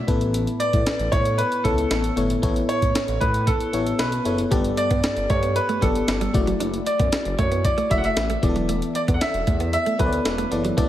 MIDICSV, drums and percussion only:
0, 0, Header, 1, 2, 480
1, 0, Start_track
1, 0, Tempo, 521739
1, 315, Time_signature, 4, 2, 24, 8
1, 10017, End_track
2, 0, Start_track
2, 0, Title_t, "Drums"
2, 75, Note_on_c, 9, 36, 100
2, 75, Note_on_c, 9, 42, 58
2, 167, Note_off_c, 9, 36, 0
2, 167, Note_off_c, 9, 42, 0
2, 194, Note_on_c, 9, 42, 42
2, 286, Note_off_c, 9, 42, 0
2, 315, Note_on_c, 9, 42, 85
2, 407, Note_off_c, 9, 42, 0
2, 436, Note_on_c, 9, 42, 46
2, 528, Note_off_c, 9, 42, 0
2, 553, Note_on_c, 9, 42, 76
2, 645, Note_off_c, 9, 42, 0
2, 675, Note_on_c, 9, 42, 50
2, 676, Note_on_c, 9, 36, 83
2, 767, Note_off_c, 9, 42, 0
2, 768, Note_off_c, 9, 36, 0
2, 795, Note_on_c, 9, 42, 80
2, 797, Note_on_c, 9, 38, 103
2, 887, Note_off_c, 9, 42, 0
2, 889, Note_off_c, 9, 38, 0
2, 915, Note_on_c, 9, 42, 44
2, 1007, Note_off_c, 9, 42, 0
2, 1035, Note_on_c, 9, 42, 54
2, 1037, Note_on_c, 9, 36, 84
2, 1127, Note_off_c, 9, 42, 0
2, 1129, Note_off_c, 9, 36, 0
2, 1154, Note_on_c, 9, 42, 50
2, 1246, Note_off_c, 9, 42, 0
2, 1275, Note_on_c, 9, 42, 83
2, 1367, Note_off_c, 9, 42, 0
2, 1397, Note_on_c, 9, 42, 44
2, 1489, Note_off_c, 9, 42, 0
2, 1517, Note_on_c, 9, 42, 65
2, 1518, Note_on_c, 9, 36, 75
2, 1609, Note_off_c, 9, 42, 0
2, 1610, Note_off_c, 9, 36, 0
2, 1638, Note_on_c, 9, 42, 49
2, 1730, Note_off_c, 9, 42, 0
2, 1755, Note_on_c, 9, 42, 79
2, 1756, Note_on_c, 9, 38, 94
2, 1847, Note_off_c, 9, 42, 0
2, 1848, Note_off_c, 9, 38, 0
2, 1876, Note_on_c, 9, 42, 52
2, 1968, Note_off_c, 9, 42, 0
2, 1997, Note_on_c, 9, 42, 58
2, 2089, Note_off_c, 9, 42, 0
2, 2116, Note_on_c, 9, 42, 41
2, 2208, Note_off_c, 9, 42, 0
2, 2236, Note_on_c, 9, 36, 106
2, 2237, Note_on_c, 9, 42, 85
2, 2328, Note_off_c, 9, 36, 0
2, 2329, Note_off_c, 9, 42, 0
2, 2357, Note_on_c, 9, 42, 47
2, 2449, Note_off_c, 9, 42, 0
2, 2476, Note_on_c, 9, 42, 74
2, 2568, Note_off_c, 9, 42, 0
2, 2597, Note_on_c, 9, 36, 83
2, 2597, Note_on_c, 9, 42, 50
2, 2689, Note_off_c, 9, 36, 0
2, 2689, Note_off_c, 9, 42, 0
2, 2717, Note_on_c, 9, 42, 85
2, 2719, Note_on_c, 9, 38, 98
2, 2809, Note_off_c, 9, 42, 0
2, 2811, Note_off_c, 9, 38, 0
2, 2835, Note_on_c, 9, 42, 45
2, 2927, Note_off_c, 9, 42, 0
2, 2956, Note_on_c, 9, 42, 57
2, 2957, Note_on_c, 9, 36, 86
2, 3048, Note_off_c, 9, 42, 0
2, 3049, Note_off_c, 9, 36, 0
2, 3075, Note_on_c, 9, 42, 51
2, 3167, Note_off_c, 9, 42, 0
2, 3194, Note_on_c, 9, 42, 83
2, 3195, Note_on_c, 9, 36, 86
2, 3286, Note_off_c, 9, 42, 0
2, 3287, Note_off_c, 9, 36, 0
2, 3316, Note_on_c, 9, 42, 43
2, 3408, Note_off_c, 9, 42, 0
2, 3436, Note_on_c, 9, 42, 69
2, 3528, Note_off_c, 9, 42, 0
2, 3556, Note_on_c, 9, 42, 50
2, 3648, Note_off_c, 9, 42, 0
2, 3672, Note_on_c, 9, 42, 82
2, 3673, Note_on_c, 9, 38, 102
2, 3764, Note_off_c, 9, 42, 0
2, 3765, Note_off_c, 9, 38, 0
2, 3792, Note_on_c, 9, 42, 50
2, 3884, Note_off_c, 9, 42, 0
2, 3914, Note_on_c, 9, 42, 60
2, 4006, Note_off_c, 9, 42, 0
2, 4033, Note_on_c, 9, 42, 42
2, 4125, Note_off_c, 9, 42, 0
2, 4154, Note_on_c, 9, 36, 102
2, 4154, Note_on_c, 9, 42, 89
2, 4246, Note_off_c, 9, 36, 0
2, 4246, Note_off_c, 9, 42, 0
2, 4274, Note_on_c, 9, 42, 47
2, 4366, Note_off_c, 9, 42, 0
2, 4392, Note_on_c, 9, 42, 75
2, 4484, Note_off_c, 9, 42, 0
2, 4513, Note_on_c, 9, 42, 50
2, 4515, Note_on_c, 9, 36, 76
2, 4605, Note_off_c, 9, 42, 0
2, 4607, Note_off_c, 9, 36, 0
2, 4633, Note_on_c, 9, 42, 76
2, 4635, Note_on_c, 9, 38, 100
2, 4725, Note_off_c, 9, 42, 0
2, 4727, Note_off_c, 9, 38, 0
2, 4753, Note_on_c, 9, 42, 45
2, 4845, Note_off_c, 9, 42, 0
2, 4874, Note_on_c, 9, 42, 57
2, 4875, Note_on_c, 9, 36, 87
2, 4966, Note_off_c, 9, 42, 0
2, 4967, Note_off_c, 9, 36, 0
2, 4993, Note_on_c, 9, 42, 47
2, 5085, Note_off_c, 9, 42, 0
2, 5114, Note_on_c, 9, 42, 86
2, 5206, Note_off_c, 9, 42, 0
2, 5235, Note_on_c, 9, 42, 43
2, 5327, Note_off_c, 9, 42, 0
2, 5357, Note_on_c, 9, 42, 65
2, 5358, Note_on_c, 9, 36, 77
2, 5449, Note_off_c, 9, 42, 0
2, 5450, Note_off_c, 9, 36, 0
2, 5478, Note_on_c, 9, 42, 51
2, 5570, Note_off_c, 9, 42, 0
2, 5595, Note_on_c, 9, 42, 82
2, 5596, Note_on_c, 9, 38, 101
2, 5687, Note_off_c, 9, 42, 0
2, 5688, Note_off_c, 9, 38, 0
2, 5715, Note_on_c, 9, 42, 51
2, 5807, Note_off_c, 9, 42, 0
2, 5835, Note_on_c, 9, 36, 94
2, 5837, Note_on_c, 9, 42, 60
2, 5927, Note_off_c, 9, 36, 0
2, 5929, Note_off_c, 9, 42, 0
2, 5956, Note_on_c, 9, 42, 41
2, 6048, Note_off_c, 9, 42, 0
2, 6077, Note_on_c, 9, 42, 84
2, 6169, Note_off_c, 9, 42, 0
2, 6197, Note_on_c, 9, 42, 48
2, 6289, Note_off_c, 9, 42, 0
2, 6316, Note_on_c, 9, 42, 76
2, 6408, Note_off_c, 9, 42, 0
2, 6436, Note_on_c, 9, 36, 86
2, 6436, Note_on_c, 9, 42, 51
2, 6528, Note_off_c, 9, 36, 0
2, 6528, Note_off_c, 9, 42, 0
2, 6554, Note_on_c, 9, 42, 86
2, 6556, Note_on_c, 9, 38, 103
2, 6646, Note_off_c, 9, 42, 0
2, 6648, Note_off_c, 9, 38, 0
2, 6674, Note_on_c, 9, 42, 45
2, 6766, Note_off_c, 9, 42, 0
2, 6795, Note_on_c, 9, 42, 58
2, 6796, Note_on_c, 9, 36, 86
2, 6887, Note_off_c, 9, 42, 0
2, 6888, Note_off_c, 9, 36, 0
2, 6915, Note_on_c, 9, 42, 48
2, 7007, Note_off_c, 9, 42, 0
2, 7034, Note_on_c, 9, 42, 87
2, 7035, Note_on_c, 9, 36, 86
2, 7126, Note_off_c, 9, 42, 0
2, 7127, Note_off_c, 9, 36, 0
2, 7156, Note_on_c, 9, 42, 44
2, 7248, Note_off_c, 9, 42, 0
2, 7276, Note_on_c, 9, 42, 64
2, 7277, Note_on_c, 9, 36, 74
2, 7368, Note_off_c, 9, 42, 0
2, 7369, Note_off_c, 9, 36, 0
2, 7396, Note_on_c, 9, 42, 50
2, 7488, Note_off_c, 9, 42, 0
2, 7513, Note_on_c, 9, 42, 77
2, 7514, Note_on_c, 9, 38, 98
2, 7605, Note_off_c, 9, 42, 0
2, 7606, Note_off_c, 9, 38, 0
2, 7633, Note_on_c, 9, 42, 53
2, 7725, Note_off_c, 9, 42, 0
2, 7754, Note_on_c, 9, 36, 91
2, 7755, Note_on_c, 9, 42, 59
2, 7846, Note_off_c, 9, 36, 0
2, 7847, Note_off_c, 9, 42, 0
2, 7873, Note_on_c, 9, 42, 39
2, 7965, Note_off_c, 9, 42, 0
2, 7994, Note_on_c, 9, 42, 81
2, 8086, Note_off_c, 9, 42, 0
2, 8116, Note_on_c, 9, 42, 49
2, 8208, Note_off_c, 9, 42, 0
2, 8235, Note_on_c, 9, 42, 76
2, 8327, Note_off_c, 9, 42, 0
2, 8355, Note_on_c, 9, 42, 51
2, 8356, Note_on_c, 9, 36, 83
2, 8447, Note_off_c, 9, 42, 0
2, 8448, Note_off_c, 9, 36, 0
2, 8475, Note_on_c, 9, 42, 84
2, 8477, Note_on_c, 9, 38, 99
2, 8567, Note_off_c, 9, 42, 0
2, 8569, Note_off_c, 9, 38, 0
2, 8594, Note_on_c, 9, 42, 45
2, 8686, Note_off_c, 9, 42, 0
2, 8713, Note_on_c, 9, 42, 59
2, 8716, Note_on_c, 9, 36, 83
2, 8805, Note_off_c, 9, 42, 0
2, 8808, Note_off_c, 9, 36, 0
2, 8833, Note_on_c, 9, 42, 50
2, 8925, Note_off_c, 9, 42, 0
2, 8953, Note_on_c, 9, 42, 87
2, 9045, Note_off_c, 9, 42, 0
2, 9074, Note_on_c, 9, 42, 45
2, 9166, Note_off_c, 9, 42, 0
2, 9195, Note_on_c, 9, 42, 65
2, 9197, Note_on_c, 9, 36, 76
2, 9287, Note_off_c, 9, 42, 0
2, 9289, Note_off_c, 9, 36, 0
2, 9316, Note_on_c, 9, 42, 53
2, 9408, Note_off_c, 9, 42, 0
2, 9433, Note_on_c, 9, 42, 80
2, 9434, Note_on_c, 9, 38, 100
2, 9525, Note_off_c, 9, 42, 0
2, 9526, Note_off_c, 9, 38, 0
2, 9553, Note_on_c, 9, 42, 53
2, 9645, Note_off_c, 9, 42, 0
2, 9675, Note_on_c, 9, 42, 58
2, 9767, Note_off_c, 9, 42, 0
2, 9794, Note_on_c, 9, 42, 41
2, 9886, Note_off_c, 9, 42, 0
2, 9915, Note_on_c, 9, 36, 100
2, 9915, Note_on_c, 9, 42, 87
2, 10007, Note_off_c, 9, 36, 0
2, 10007, Note_off_c, 9, 42, 0
2, 10017, End_track
0, 0, End_of_file